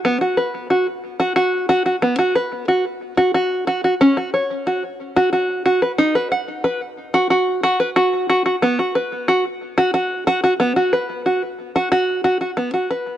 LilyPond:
\new Staff \with { instrumentName = "Five-string banjo" } { \time 4/4 \key b \major \tempo 4 = 91 b16 fis'16 b'8 fis'16 r8 fis'16 fis'8 fis'16 fis'16 b16 fis'16 b'8 | fis'16 r8 fis'16 fis'8 fis'16 fis'16 cis'16 fis'16 cis''8 fis'16 r8 fis'16 | fis'8 fis'16 b'16 dis'16 b'16 fis''8 b'16 r8 fis'16 fis'8 fis'16 b'16 | fis'8 fis'16 fis'16 b16 fis'16 b'8 fis'16 r8 fis'16 fis'8 fis'16 fis'16 |
b16 fis'16 b'8 fis'16 r8 fis'16 fis'8 fis'16 fis'16 b16 fis'16 b'8 | }